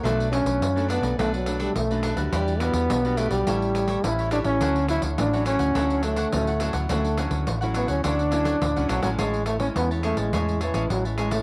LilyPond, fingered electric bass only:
\new Staff \with { instrumentName = "Fingered electric bass" } { \clef bass \time 4/4 \key d \major \tempo 4 = 105 b,,8. b,,16 fis,8. b,,16 b,,4 b,,8. d,16 | e,8. e,16 b,,8. b,,16 a,,4 a,,8. a,,16 | d,8. d,16 a,,8. d,16 d,4 d,8. d,16 | d,8. d,16 a,,8. d,16 d,4 d,16 cis,16 b,,16 a,,16 |
\key a \major a,,4 e,8. a,,16 e,8. a,,16 a,,4 | }